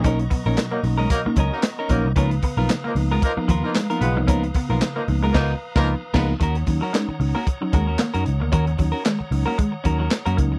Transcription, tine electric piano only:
X:1
M:4/4
L:1/16
Q:"Swing 16ths" 1/4=113
K:Ebm
V:1 name="Tine electric piano"
[^A,^C^D] z [=B,,^F,] [A,CD] [B,,F,] z [A,CD] [CD] [B,,F,] [A,CD] [CD] z3 [A,CD] z | [F,B,CE] z D, [F,B,CE] D, z [F,B,CE] [CE] z [F,B,CE] D, [F,B,CE] z [F,B,CE] D, [F,B,CE] | [F,B,CE] z D, [F,B,CE] D, z [F,B,CE] [CE] z3 [F,B,CE]2 z [F,B,CE]2 | z [DE] [G,DE] z [DE] E, [DE] z2 [G,DE] z E, z [G,DE] z E, |
E, z [DE] z E, z [G,DE] [DE] E, z [G,DE] [DE] z2 [G,DE] z |]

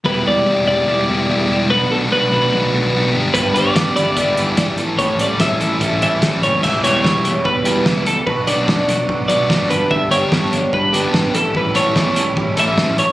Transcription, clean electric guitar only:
X:1
M:4/4
L:1/8
Q:1/4=146
K:Edor
V:1 name="Clean electric guitar"
B d2 d4- d | B A B4- B z | B d2 d4 z | c d e3 e2 c |
e c3 B3 A | B d4 d2 B | e c3 B3 A | B c4 e2 c |]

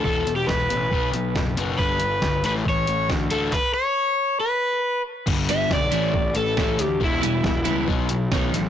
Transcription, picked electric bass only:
X:1
M:4/4
L:1/8
Q:1/4=138
K:Edor
V:1 name="Picked electric bass" clef=bass
E,,, E,,, E,,, A,,, B,,, B,,, F,,,2 | G,,, G,,, G,,, A,,, A,,, A,,, D,,2 | z8 | G,,,2 B,,, A,,, A,,, A,,, A,,, D,, |
E,,, E,,, E,,, C,, B,,,2 B,,, A,,, |]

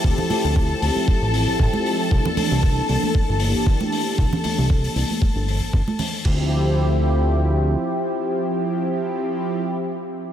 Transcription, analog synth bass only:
X:1
M:4/4
L:1/16
Q:"Swing 16ths" 1/4=116
K:Dm
V:1 name="Analog synth bass" clef=bass
D,, z2 D,,2 z D,, z2 A,,,2 A,,, A,,, z3 | C,, z2 C,,2 z C,, z G,,, G,,,2 G,,, G,,, z3 | C,, z2 C,,2 z C,, z2 G,,,2 G,,, G,,, z3 | D,,12 z4 |
z16 |]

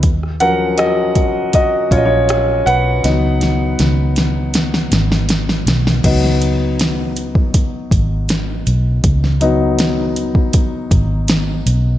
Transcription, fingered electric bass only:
X:1
M:4/4
L:1/8
Q:1/4=80
K:C#mix
V:1 name="Fingered electric bass" clef=bass
D,,4- D,, A,,,2 B,,, | C,,2 C,,3 G,,,2 B,,, | C,,4- C,, G,,,2 B,,, | C,,4- C,, G,,,2 B,,, |]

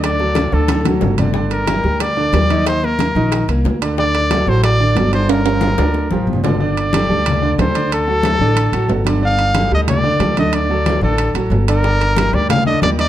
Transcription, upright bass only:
X:1
M:4/4
L:1/8
Q:1/4=183
K:Gm
V:1 name="Upright bass" clef=bass
D,,3 D,,3 G,,,2- | G,,,3 D,,3 E,,2- | E,,3 B,,,2 C,, D,,2- | D,,3 A,,,3 G,,,2- |
G,,,3 D,,2 A,,, G,,,2- | G,,,3 D,,3 D,,2- | D,,3 A,,,2 A,,, G,,,2- | G,,,3 D,,3 D,,2- |
D,,3 A,,,2 A,,, G,,,2- | G,,,3 D,,3 E,,2 |]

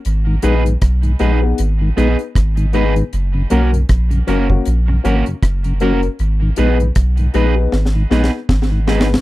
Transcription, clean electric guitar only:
X:1
M:4/4
L:1/8
Q:"Swing 16ths" 1/4=78
K:G#dor
V:1 name="Clean electric guitar"
z [B,DGB] z [B,DGB] z [B,DGB] z [B,DGB] | z [A,CFA] z [A,CFA] z [A,CFA] z [A,CFA] | z [B,DGB] z [B,DGB] z [B,DGB] z [B,DGB] |]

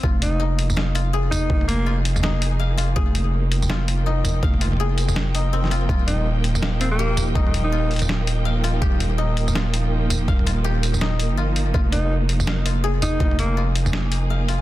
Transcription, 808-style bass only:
X:1
M:4/4
L:1/16
Q:"Swing 16ths" 1/4=164
K:Fm
V:1 name="808-style bass" clef=bass
F,,,16 | F,,,16 | F,,,16 | F,,,16 |
E,,,16 | E,,,16 | E,,,16 | E,,,8- E,,,3 G,,,4 F,,, |
F,,,16 | F,,,16 |]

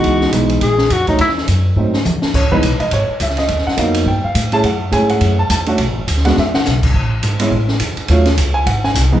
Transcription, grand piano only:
X:1
M:4/4
L:1/8
Q:"Swing" 1/4=209
K:C#m
V:1 name="Grand piano"
z8 | z8 | c B2 d c z e d- | d f ^e z =g e2 a |
f z g f2 a a z | z3 f e f z2 | z8 | z3 g f g z2 |]
V:2 name="Grand piano"
[E,G,B,D]2 [E,G,B,D]2 z3 [F,A,CD] | z4 [F,A,^B,D] z3 | z [E,G,B,D] z6 | z2 [F,^A,B,D]2 z3 [=A,CEG] |
z2 [A,CEG]3 z2 [A,C=DF] | z3 [G,B,=DF] z4 | z3 [G,B,CE] z4 | [F,A,C^E] z6 [=E,G,B,D] |]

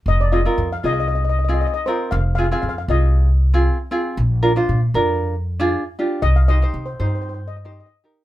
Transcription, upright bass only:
X:1
M:4/4
L:1/8
Q:1/4=117
K:Fdor
V:1 name="Upright bass" clef=bass
F,,,2 F,, C,,4 z | F,,,2 F,, C,,4 z | B,,,2 B,, F,,4 z | C,,2 C, G,,4 z |]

